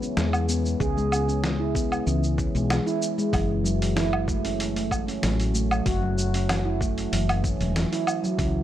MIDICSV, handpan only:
0, 0, Header, 1, 2, 480
1, 0, Start_track
1, 0, Key_signature, 3, "minor"
1, 0, Tempo, 631579
1, 614, Time_signature, 4, 2, 24, 8
1, 6561, End_track
2, 0, Start_track
2, 0, Title_t, "Handpan"
2, 0, Program_c, 0, 114
2, 16, Note_on_c, 0, 61, 68
2, 83, Note_off_c, 0, 61, 0
2, 128, Note_on_c, 0, 56, 73
2, 359, Note_off_c, 0, 56, 0
2, 373, Note_on_c, 0, 59, 72
2, 602, Note_off_c, 0, 59, 0
2, 613, Note_on_c, 0, 68, 101
2, 732, Note_off_c, 0, 68, 0
2, 738, Note_on_c, 0, 56, 97
2, 966, Note_off_c, 0, 56, 0
2, 975, Note_on_c, 0, 61, 73
2, 1042, Note_off_c, 0, 61, 0
2, 1215, Note_on_c, 0, 64, 84
2, 1320, Note_off_c, 0, 64, 0
2, 1333, Note_on_c, 0, 59, 72
2, 1562, Note_off_c, 0, 59, 0
2, 1572, Note_on_c, 0, 52, 81
2, 1692, Note_off_c, 0, 52, 0
2, 1810, Note_on_c, 0, 61, 71
2, 1931, Note_off_c, 0, 61, 0
2, 1941, Note_on_c, 0, 56, 70
2, 2167, Note_off_c, 0, 56, 0
2, 2176, Note_on_c, 0, 64, 96
2, 2405, Note_off_c, 0, 64, 0
2, 2418, Note_on_c, 0, 56, 97
2, 2527, Note_off_c, 0, 56, 0
2, 2535, Note_on_c, 0, 52, 84
2, 2763, Note_off_c, 0, 52, 0
2, 2769, Note_on_c, 0, 54, 89
2, 2890, Note_off_c, 0, 54, 0
2, 3011, Note_on_c, 0, 64, 107
2, 3131, Note_off_c, 0, 64, 0
2, 3250, Note_on_c, 0, 57, 75
2, 3365, Note_off_c, 0, 57, 0
2, 3377, Note_on_c, 0, 61, 67
2, 3606, Note_off_c, 0, 61, 0
2, 3616, Note_on_c, 0, 57, 71
2, 3845, Note_off_c, 0, 57, 0
2, 3855, Note_on_c, 0, 61, 71
2, 3923, Note_off_c, 0, 61, 0
2, 3972, Note_on_c, 0, 54, 77
2, 4201, Note_off_c, 0, 54, 0
2, 4213, Note_on_c, 0, 57, 75
2, 4442, Note_off_c, 0, 57, 0
2, 4451, Note_on_c, 0, 66, 105
2, 4572, Note_off_c, 0, 66, 0
2, 4579, Note_on_c, 0, 54, 92
2, 4806, Note_off_c, 0, 54, 0
2, 4822, Note_on_c, 0, 61, 73
2, 4886, Note_off_c, 0, 61, 0
2, 5056, Note_on_c, 0, 64, 84
2, 5160, Note_off_c, 0, 64, 0
2, 5174, Note_on_c, 0, 57, 75
2, 5402, Note_off_c, 0, 57, 0
2, 5411, Note_on_c, 0, 52, 79
2, 5532, Note_off_c, 0, 52, 0
2, 5652, Note_on_c, 0, 61, 74
2, 5772, Note_off_c, 0, 61, 0
2, 5779, Note_on_c, 0, 54, 67
2, 6007, Note_off_c, 0, 54, 0
2, 6019, Note_on_c, 0, 64, 94
2, 6247, Note_off_c, 0, 64, 0
2, 6260, Note_on_c, 0, 54, 103
2, 6368, Note_off_c, 0, 54, 0
2, 6374, Note_on_c, 0, 52, 83
2, 6561, Note_off_c, 0, 52, 0
2, 6561, End_track
0, 0, End_of_file